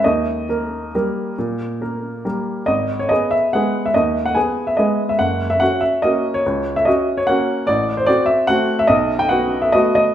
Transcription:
<<
  \new Staff \with { instrumentName = "Upright piano" } { \time 3/4 \key fis \mixolydian \tempo 4 = 142 dis''2.~ | dis''2 r4 | dis''8. cis''16 dis''8 e''8 fis''8. e''16 | dis''8. fis''16 gis''8. e''16 dis''8. e''16 |
fis''8. e''16 fis''8 e''8 dis''8. cis''16~ | cis''8. e''16 dis''8. cis''16 fis''4 | \key b \phrygian d''8. c''16 d''8 e''8 fis''8. e''16 | dis''8. g''16 fis''8. e''16 dis''8 dis''8 | }
  \new Staff \with { instrumentName = "Upright piano" } { \time 3/4 \key fis \mixolydian dis,4 <ais ais'>4 <g ais ais'>4 | ais,4 <ais ais'>4 <g ais ais'>4 | gis,,4 <b gis'>4 <gis b gis'>4 | dis,4 <b gis'>4 <gis b gis'>4 |
fis,,4 <cis' fis'>4 <ais cis' fis'>4 | cis,4 <cis' fis'>4 <ais cis' fis'>4 | \key b \phrygian a,,4 <c' fis'>4 <a c' fis'>4 | b,,4 <b fis'>4 <a b fis'>4 | }
>>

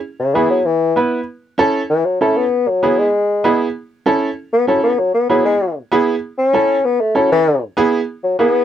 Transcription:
<<
  \new Staff \with { instrumentName = "Upright piano" } { \time 4/4 \key a \major \tempo 4 = 194 r4 <b e' gis'>8 r4. <b e' b'>8 r8 | r4 <cis' e' a'>8 r4. <cis' e' a'>8 r8 | r4 <b e' gis'>8 r4. <b e' gis'>8 r8 | r4 <cis' e' a'>8 r4. <cis' e' a'>8 r8 |
r4 <b e' gis'>8 r4. <b e' gis'>8 r8 | r4 <cis' e' a'>8 r4. <cis' e' a'>8 r8 | r4 <b e' gis'>8 r4. <b e' gis'>8 r8 | }
  \new Staff \with { instrumentName = "Bassoon" } { \clef bass \time 4/4 \key a \major r8 cis8 e8 fis8 e4 r4 | r2 e8 fis8 a8 b8~ | b8 fis4 gis2 r8 | r2 r8 b8 fis8 b8 |
fis8 b8 fis8 gis4 r4. | r8 cis'4. b8 a8 fis8 e8~ | e8 r2 fis8 b4 | }
>>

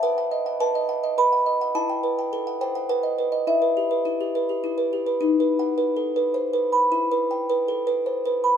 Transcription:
\new Staff \with { instrumentName = "Music box" } { \time 3/4 \key e \minor \tempo 4 = 105 << { fis''4 a''4 b''4 | a''4. g''8 fis''4 | e''2 r4 | r2. |
r2. | } \\ { b'16 fis''16 dis''16 fis''16 b'16 dis''16 fis''16 dis''16 b'16 fis''16 dis''16 fis''16 | e'16 g''16 b'16 g''16 a'16 fis''16 c''16 fis''16 b'16 dis''16 b'16 dis''16 | e'16 b'16 g'16 b'16 e'16 g'16 b'16 g'16 e'16 b'16 g'16 b'16 | \tuplet 3/2 { dis'8 b'8 fis''8 b'8 a'8 b'8 c''8 b'8 b''8 } |
\tuplet 3/2 { e'8 b'8 g''8 b'8 a'8 b'8 c''8 b'8 b''8 } | } >> }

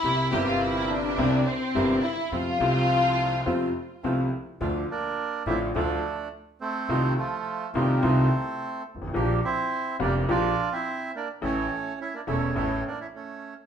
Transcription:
<<
  \new Staff \with { instrumentName = "Violin section" } { \time 4/4 \key f \major \tempo 4 = 105 e'8 g'16 f'16 e'8 d'4 c'4 e'8 | f'2. r4 | \key d \minor r1 | r1 |
r1 | r1 | }
  \new Staff \with { instrumentName = "Bandoneon" } { \time 4/4 \key f \major <bes c' e'>8 <bes c' e'>4. <bes c' e'>8 r8 <bes c' e'>8 r8 | <a c' f'>8 <a c' f'>4. <a c' f'>8 r8 <a c' f'>8 r8 | \key d \minor <a d' f'>8 r4 <a d' f'>8 <a d' f'>8 r4. | <a ees' f'>8 r4 <a ees' f'>8 <a ees' f'>8 r4. |
<bes d' g'>8 r4 <bes d' g'>8 <bes d' g'>8 r4. | <a cis' e'>8 r4 <a cis' e'>8 <a cis' e'>8 r4. | }
  \new Staff \with { instrumentName = "Bandoneon" } { \time 4/4 \key f \major r1 | r1 | \key d \minor r8 <bes d'>4 <c' e'>8 <a d'>4 r8 <a c'>8~ | <a c'>8 <f a>4 <g bes>8 <a c'>4. r8 |
r8 <c' e'>4 <bes d'>8 <d' f'>8. <c' e'>8. <bes d'>8 | <a cis'>4 <cis' e'>16 <bes d'>16 <a cis'>8 <a cis'>8 <bes d'>16 <cis' e'>16 <a cis'>8. r16 | }
  \new Staff \with { instrumentName = "Upright piano" } { \clef bass \time 4/4 \key f \major <c, c g bes e'>8 <g,, g, c g bes e'>4. <c, c g bes e'>8 r8 <g,, g, c g bes e'>8 r8 | <f, c f a f'>8 <c, c f a f'>4. <f, c f a f'>8 r8 <c, c f a f'>8 r8 | \key d \minor <d, d f a f'>8 r4 <a,, a, d f a f'>8 <d, d f a f'>8 r4. | <c, c ees a c' f'>8 r4 <c, c ees a c' f'>8 <c, c ees a c' f'>8 r4 r32 g,,32 gis,,32 a,,32 |
<bes,, bes, f bes d' g'>8 r4 <f,, f, f bes d' g'>8 <bes,, bes, f bes d' g'>8 r4. | <a,, a, e a cis' a'>8 r4 <e,, e, e a cis' a'>8 <a,, a, e a cis' a'>8 r4. | }
  \new Staff \with { instrumentName = "Upright bass" } { \clef bass \time 4/4 \key f \major c,16. r32 g,,4~ g,,16. r32 c,16. r8 r32 g,,16. r8 r32 | f,16. r32 c,4~ c,16. r32 f,16. r8 r32 c,16. r8 r32 | \key d \minor d,16. r4 r32 a,,16. r32 d,16. r4. r32 | c,16. r4 r32 c,16. r32 c,16. r4 r16 g,,32 gis,,32 a,,32 |
bes,,16. r4 r32 f,,16. r32 bes,,16. r4. r32 | a,,16. r4 r32 e,,16. r32 a,,16. r4. r32 | }
>>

